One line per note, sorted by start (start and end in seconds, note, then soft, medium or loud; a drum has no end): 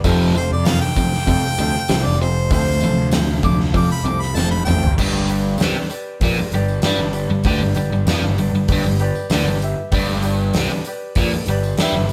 0.04 0.32 F1 loud
0.04 0.34 F2 loud
0.04 0.34 C3 medium
0.04 0.34 F3 loud
0.04 0.29 F4 loud
0.04 0.30 A4 loud
0.04 0.30 C5 loud
0.04 kick loud
0.04 open hi-hat medium
0.04 tambourine medium
0.33 0.49 F1 loud
0.33 0.63 F2 medium
0.33 0.64 C3 medium
0.33 0.59 F4 medium
0.33 0.59 A4 medium
0.33 0.60 C5 medium
0.33 0.51 C5 loud
0.33 tambourine medium
0.51 0.79 F2 loud
0.51 0.67 D5 medium
0.64 0.94 F2 medium
0.64 0.94 C3 medium
0.64 0.90 F4 medium
0.64 0.90 A4 medium
0.64 0.91 C5 medium
0.64 0.80 F5 loud
0.64 snare loud
0.64 open hi-hat medium
0.64 tambourine loud
0.81 2.06 G5 loud
0.96 1.25 F2 medium
0.96 1.25 C3 medium
0.96 1.21 F4 medium
0.96 1.22 A4 medium
0.96 1.22 C5 medium
0.96 kick medium
0.96 tambourine medium
1.13 snare soft
1.27 1.41 F2 loud
1.27 1.55 F2 medium
1.27 1.56 C3 medium
1.27 1.52 F4 loud
1.27 1.52 A4 medium
1.27 1.53 C5 loud
1.27 kick medium
1.27 open hi-hat medium
1.58 1.73 D2 medium
1.58 1.86 F2 medium
1.58 1.87 C3 medium
1.58 1.84 F4 loud
1.58 1.84 A4 medium
1.58 1.84 C5 loud
1.58 tambourine medium
1.75 snare soft
1.88 2.04 C2 loud
1.88 2.17 F2 medium
1.88 2.18 C3 loud
1.88 2.15 F4 medium
1.88 2.15 A4 medium
1.88 2.15 C5 medium
1.88 snare loud
1.88 open hi-hat medium
1.88 tambourine loud
2.04 2.48 F1 loud
2.04 2.19 D5 loud
2.21 2.49 F2 medium
2.21 2.49 C3 medium
2.21 2.46 F4 medium
2.21 2.46 A4 medium
2.21 2.51 C5 medium
2.21 2.46 C5 medium
2.50 2.79 D2 loud
2.50 2.79 F2 medium
2.50 2.79 C3 medium
2.50 2.75 F4 medium
2.50 2.76 A4 medium
2.50 2.76 C5 loud
2.50 3.12 C5 loud
2.50 kick loud
2.50 open hi-hat medium
2.50 tambourine medium
2.80 2.95 A1 loud
2.80 3.10 F2 medium
2.80 3.10 C3 medium
2.80 3.07 F4 medium
2.80 3.08 A4 medium
2.80 3.07 C5 medium
2.80 tambourine medium
2.96 3.70 D2 medium
3.11 3.41 F2 medium
3.11 3.41 C3 medium
3.11 3.37 F4 medium
3.11 3.37 A4 medium
3.11 3.38 C5 medium
3.11 snare loud
3.11 open hi-hat medium
3.11 tambourine loud
3.42 3.72 F2 medium
3.42 3.72 C3 medium
3.42 3.68 F4 medium
3.42 3.68 A4 medium
3.42 3.68 C5 medium
3.42 3.59 D6 loud
3.42 kick medium
3.42 tambourine medium
3.60 snare soft
3.73 4.02 F2 medium
3.73 3.88 F2 medium
3.73 4.03 C3 medium
3.73 3.99 F4 loud
3.73 3.99 A4 medium
3.73 3.99 C5 loud
3.73 3.90 D6 loud
3.73 kick medium
3.73 open hi-hat medium
3.73 tambourine soft
3.92 4.07 B5 loud
4.03 4.33 C2 medium
4.03 4.33 F2 medium
4.03 4.33 C3 medium
4.03 4.29 F4 medium
4.03 4.30 A4 medium
4.03 4.30 C5 medium
4.03 4.22 D6 loud
4.03 tambourine medium
4.21 4.37 B5 loud
4.21 snare soft
4.34 4.64 F1 loud
4.34 4.65 F2 medium
4.34 4.60 F4 medium
4.34 4.60 A4 medium
4.34 4.61 C5 medium
4.34 4.50 A5 loud
4.34 tambourine loud
4.38 4.65 C3 medium
4.38 snare medium
4.51 4.64 B5 medium
4.51 high tom medium
4.65 4.81 A1 loud
4.65 4.96 F2 medium
4.65 4.96 C3 medium
4.65 4.91 F4 medium
4.65 4.92 A4 medium
4.65 4.92 C5 medium
4.65 4.96 G5 loud
4.65 mid tom medium
4.82 4.96 G1 medium
4.82 floor tom medium
4.98 5.56 G1 medium
4.98 5.60 G2 loud
4.98 5.23 G4 medium
4.98 5.23 B4 medium
4.98 5.23 D5 loud
4.98 kick loud
4.98 crash loud
5.13 tambourine soft
5.27 5.54 G4 medium
5.27 5.54 B4 medium
5.27 5.54 D5 medium
5.27 open hi-hat medium
5.27 tambourine medium
5.42 tambourine soft
5.58 5.74 C2 medium
5.58 5.84 G4 medium
5.58 5.85 B4 medium
5.58 5.85 D5 loud
5.58 snare loud
5.58 open hi-hat medium
5.58 tambourine loud
5.62 5.76 C3 loud
5.75 muted picked electric bass stroke soft
5.75 muted overdriven electric guitar stroke medium
5.89 6.15 G4 medium
5.89 6.15 B4 medium
5.89 6.16 D5 medium
5.89 open hi-hat medium
5.89 tambourine medium
6.21 6.36 A#1 medium
6.21 6.37 A#2 medium
6.21 6.47 G4 medium
6.21 6.47 B4 medium
6.21 6.48 D5 medium
6.21 kick loud
6.21 open hi-hat medium
6.37 muted picked electric bass stroke soft
6.37 muted overdriven electric guitar stroke medium
6.37 tambourine soft
6.52 6.81 G1 medium
6.52 6.78 G2 medium
6.52 6.78 G4 loud
6.52 6.78 B4 loud
6.52 6.78 D5 loud
6.52 open hi-hat medium
6.68 tambourine medium
6.82 6.97 G2 loud
6.82 6.99 G3 loud
6.82 7.08 G4 loud
6.82 7.09 B4 loud
6.82 7.09 D5 loud
6.82 snare loud
6.82 open hi-hat medium
6.82 tambourine loud
6.98 7.27 G1 medium
6.98 7.24 G2 medium
6.98 tambourine soft
7.13 7.39 G4 medium
7.13 7.40 B4 medium
7.13 7.40 D5 medium
7.13 open hi-hat medium
7.13 tambourine medium
7.29 7.44 G1 medium
7.29 7.45 G2 medium
7.44 7.59 D2 loud
7.44 7.60 D3 loud
7.44 7.70 G4 loud
7.44 7.70 B4 loud
7.44 7.71 D5 loud
7.44 kick loud
7.44 open hi-hat medium
7.60 7.75 G1 medium
7.60 7.75 G2 medium
7.60 tambourine soft
7.75 7.90 G1 medium
7.75 7.91 G2 medium
7.75 8.00 G4 medium
7.75 8.01 B4 medium
7.75 8.01 D5 loud
7.75 open hi-hat medium
7.75 tambourine medium
7.91 8.05 G1 medium
7.91 8.07 G2 medium
7.91 tambourine soft
8.06 8.21 F2 loud
8.06 8.22 F3 medium
8.06 8.31 G4 medium
8.06 8.32 B4 medium
8.06 8.32 D5 loud
8.06 snare loud
8.06 open hi-hat medium
8.06 tambourine loud
8.22 8.36 G1 medium
8.22 8.37 G2 medium
8.37 8.51 G1 medium
8.37 8.54 G2 medium
8.37 8.63 G4 medium
8.37 8.64 B4 medium
8.37 8.64 D5 medium
8.37 open hi-hat medium
8.37 tambourine medium
8.52 8.67 G1 medium
8.52 8.70 G2 medium
8.68 8.82 G1 medium
8.68 8.85 G2 loud
8.68 8.94 G4 medium
8.68 8.94 B4 medium
8.68 8.94 D5 loud
8.68 kick loud
8.68 open hi-hat medium
8.83 9.12 G1 medium
8.83 9.10 G2 medium
8.83 tambourine soft
8.99 9.25 G4 loud
8.99 9.25 B4 loud
8.99 9.26 D5 loud
8.99 open hi-hat medium
9.15 tambourine medium
9.30 9.43 D2 loud
9.30 9.46 D3 loud
9.30 9.57 G4 loud
9.30 9.57 B4 loud
9.30 9.57 D5 loud
9.30 snare loud
9.30 open hi-hat medium
9.30 tambourine medium
9.44 9.74 G1 medium
9.48 9.72 G2 medium
9.61 9.87 G4 medium
9.61 9.87 B4 medium
9.61 9.87 E5 medium
9.61 open hi-hat medium
9.61 tambourine medium
9.91 10.50 G1 loud
9.91 10.54 G2 loud
9.91 10.17 G4 loud
9.91 10.17 B4 loud
9.91 10.18 D5 loud
9.91 kick loud
9.91 open hi-hat medium
10.08 tambourine soft
10.22 10.48 G4 medium
10.22 10.49 B4 medium
10.22 10.49 D5 loud
10.22 open hi-hat medium
10.22 tambourine medium
10.40 tambourine soft
10.54 10.69 C2 medium
10.54 10.71 C3 medium
10.54 10.80 G4 medium
10.54 10.80 B4 medium
10.54 10.81 D5 loud
10.54 snare loud
10.54 open hi-hat medium
10.54 tambourine medium
10.71 muted picked electric bass stroke soft
10.71 muted overdriven electric guitar stroke medium
10.85 11.11 G4 medium
10.85 11.11 B4 medium
10.85 11.11 D5 medium
10.85 open hi-hat medium
10.85 tambourine medium
11.15 11.31 A#1 loud
11.15 11.32 A#2 loud
11.15 11.42 G4 medium
11.15 11.42 B4 medium
11.15 11.42 D5 loud
11.15 kick loud
11.15 open hi-hat medium
11.32 muted picked electric bass stroke soft
11.32 muted overdriven electric guitar stroke medium
11.32 tambourine soft
11.46 11.76 G1 medium
11.46 11.73 G2 medium
11.46 11.73 G4 loud
11.46 11.73 B4 loud
11.46 11.73 D5 loud
11.46 open hi-hat medium
11.63 tambourine medium
11.77 11.92 G2 loud
11.77 11.94 G3 loud
11.77 12.04 G4 loud
11.77 12.05 B4 loud
11.77 snare loud
11.77 open hi-hat medium
11.77 tambourine loud
11.82 12.05 E5 loud
11.93 12.13 G1 medium
11.93 12.13 G2 medium
12.09 open hi-hat medium